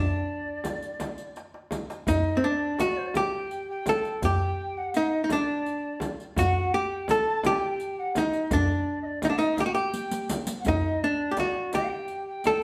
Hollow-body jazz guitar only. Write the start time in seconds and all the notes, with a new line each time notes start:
Already playing: D4
2.08 D#4
2.37 C4
2.44 D4
2.80 F#4
3.17 G4
3.89 A4
4.25 G4
4.97 D#4
5.24 D#4
5.32 D4
6.39 F#4
6.74 G4
7.11 A4
7.46 G4
8.18 D#4
8.53 D4
9.25 D#4
9.30 D4
9.39 D#4
9.60 G4
9.66 F#4
9.75 G4
10.68 D#4
11.04 D4
11.31 G4
11.40 F#4
11.75 G4
12.47 A4